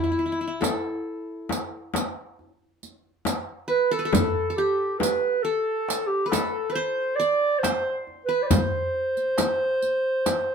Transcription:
0.00 1.06 E4 loud
0.00 0.11 E4 medium
0.00 0.13 G4 medium
0.12 0.18 E4 soft
0.19 0.25 E4 soft
0.26 0.32 E4 soft
0.32 0.40 E4 medium
0.41 0.47 E4 medium
0.47 1.87 E4 medium
0.61 1.78 A4 medium
0.61 riq soft
0.61 darbuka tek medium
0.61 frame drum medium
1.49 riq soft
1.49 darbuka tek medium
1.49 frame drum medium
1.94 riq soft
1.94 darbuka tek medium
1.94 frame drum medium
2.39 darbuka ka soft
2.83 riq soft
2.83 darbuka ka soft
3.25 riq soft
3.25 darbuka tek medium
3.25 frame drum medium
3.68 3.98 B4 medium
3.68 3.94 B4 medium
3.68 darbuka ka soft
3.91 4.05 A4 medium
3.91 4.56 A4 medium
3.99 5.08 B4 medium
4.05 4.50 A4 medium
4.13 riq medium
4.13 frame drum medium
4.13 darbuka dum medium
4.50 5.44 A4 medium
4.56 5.00 G4 medium
4.56 5.84 G4 medium
4.99 5.44 B4 medium
4.99 darbuka tek medium
4.99 frame drum medium
5.03 riq soft
5.42 6.09 A4 loud
5.42 6.32 A4 medium
5.89 riq soft
5.89 darbuka tek medium
6.07 6.28 G4 medium
6.26 6.74 A4 medium
6.26 6.69 B4 medium
6.32 7.50 A4 medium
6.32 riq soft
6.32 darbuka tek medium
6.32 frame drum medium
6.70 6.81 B4 medium
6.70 7.17 C5 loud
6.75 7.63 C5 medium
6.75 darbuka ka soft
7.16 7.61 D5 loud
7.16 8.18 D5 medium
7.20 riq soft
7.20 darbuka ka soft
7.59 8.00 C5 loud
7.63 8.35 C5 medium
7.63 riq soft
7.63 darbuka tek medium
7.63 frame drum medium
8.07 darbuka ka soft
8.25 8.44 B4 medium
8.25 8.57 B4 medium
8.43 8.48 D5 medium
8.47 10.55 C5 loud
8.47 frame drum medium
8.47 darbuka dum medium
8.51 10.55 C5 medium
8.51 riq medium
8.95 darbuka ka soft
9.17 riq soft
9.17 darbuka ka soft
9.38 riq soft
9.38 darbuka tek medium
9.38 frame drum medium
9.82 riq soft
9.82 darbuka ka soft
10.26 riq soft
10.26 darbuka tek medium
10.26 frame drum medium

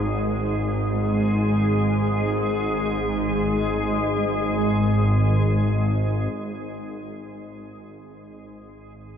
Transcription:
0.00 6.33 G#1 medium
0.00 6.33 G#2 medium
0.00 6.34 G#3 medium
0.00 6.34 G#4 medium
6.34 9.18 G#1 medium
6.34 9.18 G#2 medium
6.34 9.18 G#3 medium
6.34 9.18 G#4 medium

